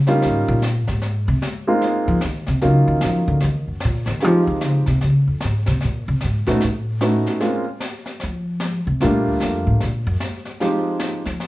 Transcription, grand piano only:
0.08 G3 A#3 C#4 D#4 F4
1.67 G#3 A#3 C4 D#4 F4
2.62 F#3 A#3 C#4 D#4 F4
4.22 F3 G#3 C4 D#4 G4
6.47 A3 B3 C#4 D#4 F#4
7.01 A3 B3 C#4 D#4 F#4
7.40 G#3 A#3 C4 C#4 F4
9.01 G3 A3 A#3 D4 F4
10.61 F3 G#3 C4 D#4 G4

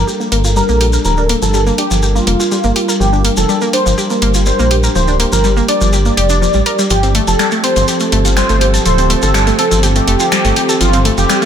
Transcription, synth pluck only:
0.07 G4
0.20 A#3
0.32 A#3
0.44 F4
0.56 G3
0.69 A#3
0.81 G4
0.93 A#4
1.05 F3
1.18 D4
1.29 A#3
1.42 F3
1.54 G3
1.67 A#3
1.78 D4
1.91 F3
2.03 G4
2.15 A#3
2.27 A#3
2.40 F4
2.51 G3
2.64 A#3
2.76 G4
2.88 A#4
3.00 F3
3.13 D4
3.24 A#3
3.37 F3
3.49 G3
3.62 A#3
3.73 D4
3.86 F3
3.98 G4
4.10 A#3
4.22 A#3
4.35 F4
4.47 G3
4.59 A#3
4.71 G4
4.84 A#4
4.95 F3
5.08 D4
5.20 A#3
5.32 F3
5.44 G3
5.57 A#3
5.68 D4
5.81 F3
5.93 G4
6.05 A#3
6.17 G4
6.30 D4
6.42 F3
6.54 G3
6.66 A#4
6.79 G3
6.90 F3
7.03 C4
7.15 A3
7.27 F3
7.39 G3
7.52 A3
7.64 C4
7.76 F3
7.88 G4
8.01 A3
8.12 A3
8.25 F4
8.37 G3
8.49 A3
8.61 G4
8.74 A4
8.85 F3
8.98 C4
9.10 A3
9.22 F3
9.34 G3
9.47 A3
9.59 C4
9.71 F3
9.83 G4
9.96 A3
10.07 A3
10.20 F4
10.32 G3
10.45 A3
10.56 G4
10.69 A4
10.81 F3
10.93 C4
11.05 A3
11.18 F3
11.29 G3
11.42 A3

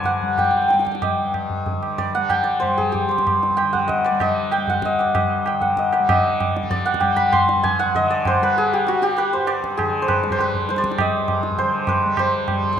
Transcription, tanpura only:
Already playing: G2 D3 G3
0.23 G3
0.73 G3
1.21 G2
1.71 D3
2.17 G3
2.66 G3
3.16 G2
3.62 D3
4.11 G3
4.57 G3
5.05 G2
5.51 D3
6.00 G3
6.11 D3
6.56 G3
7.02 G3
7.50 G2
7.97 D3
8.42 G3
8.88 G3
9.35 G2
9.80 D3
10.26 G3
10.71 G3
11.16 G2
11.62 D3
12.06 G3
12.51 G3

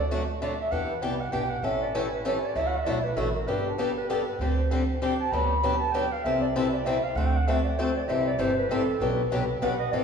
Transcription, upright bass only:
Already playing: D2
0.72 E2
1.03 C2
1.33 B1
1.63 A1
2.55 D2
2.85 B1
3.16 A1
3.47 G1
4.39 D2
5.32 D2
6.24 C2
7.15 D2
8.08 C2
8.38 G1
8.69 A1
9.00 B1
9.31 C2
9.61 B1
9.93 A1

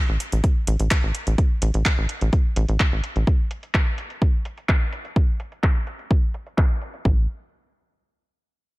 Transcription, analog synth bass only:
0.09 A1
0.32 A1
0.67 A1
0.80 A1
1.03 A1
1.27 A1
1.62 A1
1.74 A1
1.98 A1
2.21 A1
2.56 A1
2.69 A1
2.92 A1
3.16 A1
7.05 A1

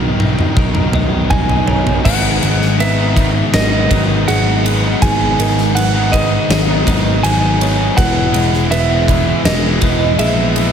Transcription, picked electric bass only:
Already playing: B1
0.57 B1
2.05 G#1
2.43 G#1
3.53 G#1
3.91 G#1
4.28 G#1
5.02 G#1
5.39 G#1
6.49 G#1
6.87 G#1
7.24 G#1
7.98 E1
8.34 E1
9.45 E1
9.82 E1
10.19 A#1

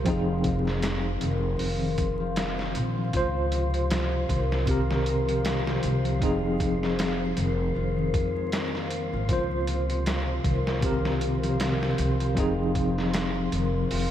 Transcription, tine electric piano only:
0.04 F3 C4 D#4
0.10 G#4
3.15 F4 C5
4.66 C3 C4 G4
4.71 A#4
6.20 F3 C4 D#4
6.25 G#4
9.31 F4 C5
10.81 C3 C4 G4
10.86 A#4
12.35 F3 C4 D#4
12.40 G#4

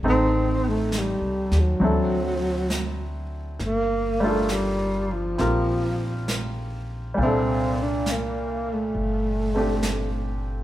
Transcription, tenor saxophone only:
0.09 C4
0.69 A3
0.99 G3
1.59 F#3
3.64 A#3
4.22 A3
4.52 G3
5.13 F3
7.23 C4
7.83 D4
8.12 A#3
8.74 A3

